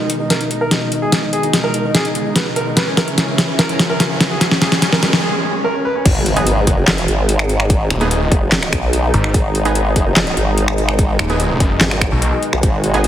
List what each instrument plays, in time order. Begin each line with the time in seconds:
Already playing: analog synth pad B2 D#3 G#3 D#4, riser
0.10 closed hi-hat
0.20 grand piano D#4
0.30 grand piano A#4, snare, closed hi-hat
0.41 grand piano D#4, closed hi-hat
0.51 grand piano D#4, closed hi-hat
0.61 grand piano A#4
0.71 grand piano D#4, snare, closed hi-hat
0.82 grand piano D#4
0.92 grand piano D#4, closed hi-hat
1.02 grand piano G#4
1.12 grand piano D#4, snare, closed hi-hat
1.23 grand piano D#4
1.33 grand piano G#4, closed hi-hat
1.43 grand piano D#4, closed hi-hat
1.53 grand piano D#4, snare, closed hi-hat
1.64 grand piano A#4
1.74 grand piano D#4, closed hi-hat
1.84 grand piano D#4
1.95 grand piano G#4, snare, closed hi-hat
2.05 grand piano D#4, closed hi-hat
2.15 grand piano D#4, closed hi-hat
2.25 grand piano D#4
2.36 grand piano B4, snare, closed hi-hat
2.46 grand piano D#4
2.56 grand piano A#4, closed hi-hat
2.67 grand piano D#4
2.77 analog synth pad C#3 E3 E4, grand piano B4, snare, closed hi-hat
2.87 grand piano C#4
2.97 grand piano A#4, snare, closed hi-hat
3.08 grand piano C#4, closed hi-hat
3.18 grand piano C#4, snare, closed hi-hat
3.28 grand piano C#4
3.38 snare, closed hi-hat
3.49 grand piano C#4
3.59 grand piano A#4, snare, closed hi-hat
3.69 grand piano C#4, closed hi-hat
3.79 grand piano C#4, snare, closed hi-hat
3.90 grand piano A#4
4.00 grand piano C#4, snare, closed hi-hat
4.10 grand piano C#4
4.21 grand piano C#4, snare, closed hi-hat
4.31 grand piano G#4
4.41 grand piano C#4, snare, closed hi-hat
4.51 grand piano C#4, snare
4.62 grand piano G#4, snare, closed hi-hat
4.72 grand piano C#4, snare, closed hi-hat
4.82 grand piano C#4, snare, closed hi-hat
4.93 grand piano A#4, snare
5.03 grand piano C#4, snare, closed hi-hat
5.13 grand piano C#4, snare
5.23 grand piano G#4
5.34 grand piano C#4
5.44 grand piano C#4
5.54 grand piano C#4
5.64 grand piano A#4
5.75 grand piano C#4
5.85 grand piano B4
5.95 grand piano C#4
6.05 wobble bass G#1, analog synth pad B2 D#3 G#3 D#4, kick, closed hi-hat, crash, impact
6.26 closed hi-hat
6.36 synth stab B3 D#4 G#4, closed hi-hat
6.47 closed hi-hat
6.67 wobble bass F#1, kick, closed hi-hat
6.88 snare, clap, closed hi-hat
6.98 closed hi-hat
7.08 wobble bass G#1, closed hi-hat
7.29 closed hi-hat
7.39 finger snap
7.49 closed hi-hat
7.60 finger snap
7.70 kick, closed hi-hat
7.90 detuned saw bass D#1, finger snap, closed hi-hat
8.01 synth stab B3 D#4 G#4, closed hi-hat
8.11 closed hi-hat
8.32 wobble bass F#1, kick, closed hi-hat
8.52 snare, clap, closed hi-hat
8.63 finger snap, closed hi-hat
8.73 wobble bass B1, finger snap, kick, closed hi-hat
8.93 closed hi-hat
9.14 detuned saw bass G#1, closed hi-hat
9.24 finger snap
9.34 wobble bass G#1, kick, closed hi-hat
9.55 closed hi-hat
9.65 synth stab B3 D#4 G#4, closed hi-hat
9.75 closed hi-hat
9.96 wobble bass F#1, kick, closed hi-hat
10.16 snare, clap, closed hi-hat
10.27 closed hi-hat
10.37 wobble bass G#1, closed hi-hat
10.58 closed hi-hat
10.68 finger snap
10.78 closed hi-hat
10.89 finger snap
10.99 kick, closed hi-hat
11.19 detuned saw bass D#1, finger snap, closed hi-hat
11.30 synth stab B3 D#4 G#4, closed hi-hat
11.40 closed hi-hat
11.60 detuned saw bass F#1, kick, closed hi-hat
11.81 wobble bass G#1, snare, clap, closed hi-hat
11.91 finger snap, closed hi-hat
12.01 finger snap, kick, closed hi-hat
12.12 detuned saw bass B1
12.22 closed hi-hat
12.43 closed hi-hat
12.53 wobble bass B1, finger snap
12.63 wobble bass G#1, analog synth pad F#4, kick, closed hi-hat
12.84 closed hi-hat
12.94 synth stab B3 D#4 G#4, closed hi-hat
13.04 closed hi-hat